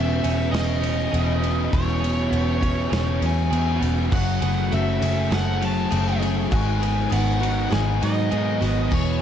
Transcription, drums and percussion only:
0.24 ride
0.54 snare, ride
0.83 ride
1.14 ride
1.43 ride
1.73 kick, ride
2.04 ride
2.33 ride
2.63 kick, ride
2.93 snare, ride
3.22 ride
3.53 ride
3.82 ride
4.12 kick, crash
4.42 ride
4.72 ride
5.02 ride
5.32 snare, ride
5.62 ride
5.92 ride
6.22 ride
6.52 kick, ride
6.83 ride
7.12 ride
7.43 ride
7.72 snare, ride
8.03 ride
8.32 ride
8.62 snare, ride
8.92 kick, crash

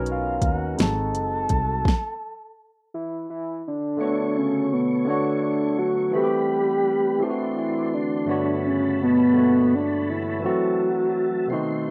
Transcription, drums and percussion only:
0.06 closed hi-hat
0.42 kick, closed hi-hat
0.79 snare, closed hi-hat
1.15 closed hi-hat
1.49 kick, closed hi-hat
1.85 kick, snare

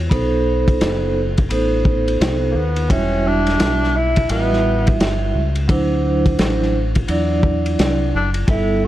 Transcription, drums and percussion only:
0.11 kick, ride
0.68 kick, ride
0.81 snare, hi-hat pedal, ride
1.38 kick, ride
1.51 ride
1.85 kick
2.08 ride
2.21 snare, hi-hat pedal, ride
2.76 ride
2.90 kick, ride
3.47 snare, ride
3.60 snare, hi-hat pedal, ride
3.84 snare
4.16 kick, ride
4.29 ride
4.53 snare
4.87 kick, ride
5.00 snare, hi-hat pedal, ride
5.55 ride
5.69 kick, ride
6.26 kick, ride
6.39 snare, hi-hat pedal, ride
6.62 snare
6.95 kick, ride
7.08 ride
7.43 kick
7.66 ride
7.79 snare, hi-hat pedal, ride
8.34 ride
8.48 kick, ride

